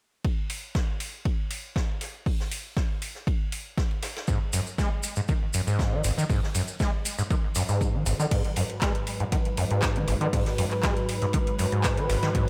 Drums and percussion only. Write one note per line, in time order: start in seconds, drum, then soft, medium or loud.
0.24 kick loud
0.24 ride medium
0.50 open hi-hat loud
0.50 ride medium
0.75 kick loud
0.75 snare loud
0.75 ride medium
1.00 open hi-hat medium
1.00 ride medium
1.25 kick loud
1.25 ride medium
1.50 open hi-hat loud
1.50 ride medium
1.76 kick loud
1.76 snare loud
1.76 ride medium
2.01 snare soft
2.01 open hi-hat medium
2.01 ride medium
2.26 kick loud
2.26 open hi-hat medium
2.40 snare soft
2.51 open hi-hat loud
2.51 ride medium
2.77 kick loud
2.77 snare loud
2.77 ride medium
3.02 open hi-hat medium
3.02 ride medium
3.15 snare soft
3.27 kick loud
3.27 ride medium
3.52 open hi-hat loud
3.52 ride medium
3.78 kick loud
3.78 snare loud
3.78 ride medium
3.91 ride soft
4.02 snare medium
4.02 open hi-hat medium
4.02 ride medium
4.16 snare loud
4.16 ride medium
4.27 kick loud
4.27 ride medium
4.27 maracas soft
4.53 open hi-hat loud
4.53 ride medium
4.53 maracas medium
4.67 maracas soft
4.78 kick loud
4.78 snare loud
4.78 ride medium
4.78 maracas soft
5.03 open hi-hat medium
5.03 ride medium
5.03 maracas medium
5.16 maracas medium
5.28 kick loud
5.28 ride medium
5.28 maracas soft
5.53 open hi-hat loud
5.53 ride medium
5.53 maracas medium
5.67 maracas medium
5.79 kick loud
5.79 snare loud
5.79 ride medium
5.79 maracas soft
6.04 snare soft
6.04 open hi-hat medium
6.04 ride medium
6.04 maracas medium
6.18 maracas medium
6.30 kick loud
6.30 open hi-hat medium
6.30 maracas soft
6.43 snare medium
6.54 open hi-hat loud
6.54 ride medium
6.54 maracas loud
6.68 maracas medium
6.80 kick loud
6.80 snare loud
6.80 ride medium
6.80 maracas soft
7.05 open hi-hat medium
7.05 ride medium
7.05 maracas medium
7.18 snare soft
7.18 maracas medium
7.30 kick loud
7.30 ride medium
7.30 maracas soft
7.55 open hi-hat loud
7.55 ride medium
7.55 maracas loud
7.68 maracas medium
7.81 kick loud
7.81 ride medium
7.81 maracas soft
8.06 open hi-hat medium
8.06 ride medium
8.06 maracas medium
8.20 maracas medium
8.31 kick loud
8.31 closed hi-hat loud
8.31 ride medium
8.31 crash medium
8.45 closed hi-hat soft
8.56 open hi-hat loud
8.56 ride medium
8.70 closed hi-hat soft
8.81 kick loud
8.81 snare loud
8.81 clap loud
8.81 closed hi-hat medium
8.81 ride medium
8.95 closed hi-hat soft
9.07 open hi-hat medium
9.07 ride medium
9.20 closed hi-hat soft
9.32 kick loud
9.32 closed hi-hat medium
9.32 ride medium
9.45 closed hi-hat soft
9.57 open hi-hat loud
9.57 ride medium
9.71 closed hi-hat soft
9.82 kick loud
9.82 snare loud
9.82 clap loud
9.82 closed hi-hat medium
9.82 ride medium
9.96 closed hi-hat soft
10.07 snare soft
10.07 open hi-hat medium
10.07 ride medium
10.21 closed hi-hat soft
10.33 kick loud
10.33 closed hi-hat medium
10.33 open hi-hat medium
10.46 snare medium
10.46 closed hi-hat soft
10.58 open hi-hat loud
10.58 ride medium
10.71 clap soft
10.71 closed hi-hat soft
10.83 kick loud
10.83 snare loud
10.83 clap loud
10.83 closed hi-hat medium
10.83 ride medium
10.97 closed hi-hat soft
11.09 open hi-hat loud
11.09 ride medium
11.21 snare soft
11.21 closed hi-hat soft
11.33 kick loud
11.33 closed hi-hat medium
11.33 ride medium
11.47 closed hi-hat soft
11.58 open hi-hat loud
11.58 ride medium
11.72 closed hi-hat soft
11.84 kick loud
11.84 snare loud
11.84 clap loud
11.84 closed hi-hat medium
11.84 ride medium
11.97 closed hi-hat soft
11.97 ride soft
12.09 snare loud
12.09 open hi-hat medium
12.09 ride medium
12.23 snare loud
12.23 closed hi-hat soft
12.23 ride medium
12.35 kick loud
12.35 closed hi-hat medium
12.35 ride medium